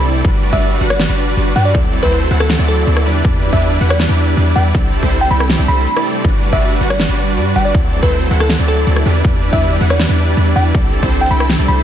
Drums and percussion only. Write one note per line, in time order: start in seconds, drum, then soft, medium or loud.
0.06 open hi-hat medium
0.25 kick loud
0.25 closed hi-hat medium
0.43 closed hi-hat medium
0.53 kick medium
0.62 closed hi-hat medium
0.71 closed hi-hat soft
0.76 closed hi-hat medium
0.81 closed hi-hat medium
0.90 cross-stick medium
1.00 snare loud
1.00 closed hi-hat medium
1.18 closed hi-hat medium
1.37 closed hi-hat medium
1.56 open hi-hat medium
1.75 kick loud
1.75 closed hi-hat medium
1.93 closed hi-hat medium
2.03 kick medium
2.12 closed hi-hat medium
2.22 closed hi-hat soft
2.26 closed hi-hat medium
2.31 closed hi-hat medium
2.40 cross-stick medium
2.50 snare loud
2.50 closed hi-hat medium
2.68 closed hi-hat medium
2.87 closed hi-hat medium
2.97 cross-stick medium
3.06 open hi-hat medium
3.25 kick loud
3.25 closed hi-hat medium
3.43 closed hi-hat medium
3.53 kick medium
3.62 closed hi-hat medium
3.72 closed hi-hat medium
3.76 closed hi-hat medium
3.81 closed hi-hat medium
3.90 cross-stick medium
4.00 snare loud
4.00 closed hi-hat medium
4.18 closed hi-hat medium
4.37 closed hi-hat medium
4.56 open hi-hat loud
4.75 kick loud
4.75 closed hi-hat medium
4.93 closed hi-hat medium
5.03 kick medium
5.12 closed hi-hat medium
5.21 closed hi-hat medium
5.26 closed hi-hat medium
5.31 closed hi-hat medium
5.40 cross-stick medium
5.50 snare loud
5.50 closed hi-hat medium
5.68 closed hi-hat medium
5.87 closed hi-hat medium
5.96 cross-stick medium
6.06 open hi-hat loud
6.25 kick loud
6.25 closed hi-hat medium
6.43 closed hi-hat medium
6.53 kick medium
6.62 closed hi-hat medium
6.71 closed hi-hat medium
6.76 closed hi-hat medium
6.81 closed hi-hat medium
6.90 cross-stick medium
7.00 snare loud
7.00 closed hi-hat medium
7.18 closed hi-hat medium
7.37 closed hi-hat medium
7.56 open hi-hat loud
7.75 kick loud
7.75 closed hi-hat medium
7.93 closed hi-hat medium
8.03 kick medium
8.12 closed hi-hat medium
8.21 closed hi-hat medium
8.26 closed hi-hat medium
8.31 closed hi-hat medium
8.40 cross-stick medium
8.50 snare loud
8.50 closed hi-hat medium
8.68 closed hi-hat medium
8.87 closed hi-hat medium
8.96 cross-stick medium
9.06 open hi-hat loud
9.25 kick loud
9.25 closed hi-hat medium
9.43 closed hi-hat medium
9.53 kick medium
9.62 closed hi-hat medium
9.72 closed hi-hat medium
9.76 closed hi-hat medium
9.81 closed hi-hat medium
9.90 cross-stick medium
10.00 snare loud
10.00 closed hi-hat medium
10.18 closed hi-hat medium
10.37 closed hi-hat medium
10.56 open hi-hat medium
10.75 kick loud
10.75 closed hi-hat medium
10.93 closed hi-hat medium
11.03 kick medium
11.12 closed hi-hat medium
11.22 closed hi-hat soft
11.26 closed hi-hat medium
11.31 closed hi-hat medium
11.40 cross-stick medium
11.50 snare loud
11.50 closed hi-hat medium
11.68 closed hi-hat medium